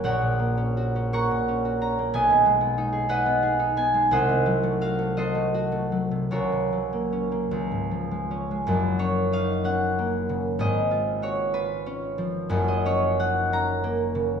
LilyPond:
<<
  \new Staff \with { instrumentName = "Harp" } { \time 6/8 \key fis \major \tempo 4. = 60 << { <fis'' ais''>4. cis'''4 ais''8 | gis''4. fis''4 gis''8 | ges''4 eis''8 ees''4. | cis''2.~ |
cis''8 cis''8 eis''8 fis''4. | dis''4 cis''8 b'4.~ | b'16 dis''16 cis''8 fis''8 ais''4. | } \\ { <ais' cis''>4. <fis'' ais''>4. | <b' dis''>4. <b' dis''>4. | <c'' ees''>4. <a' c''>4. | <fis' ais'>2~ <fis' ais'>8 r8 |
r2. | r2. | r2. | } >> }
  \new Staff \with { instrumentName = "Harp" } { \time 6/8 \key fis \major <ais,, ais cis' fis'>16 ais,16 ais16 cis'16 fis'16 cis'16 ais16 ais,16 cis'16 fis'16 cis'16 ais16 | b,,16 b,16 gis16 b16 dis'16 gis'16 dis'16 b16 gis'16 dis'16 b16 gis16 | c,16 c16 ges16 a16 ges'16 a16 ges'16 a16 ges'16 a16 ges16 c16 | cis,16 cis16 fis16 ais16 cis'16 ais16 cis,16 gis,16 eis16 gis16 cis'16 gis16 |
<fis,, fis,>8 cis'8 dis'8 cis'8 ais8 cis8 | <gis,, gis,>8 eis'8 fis'8 eis'8 cis'8 eis8 | <fis,, fis,>8 cis'8 dis'8 cis'8 ais8 cis8 | }
>>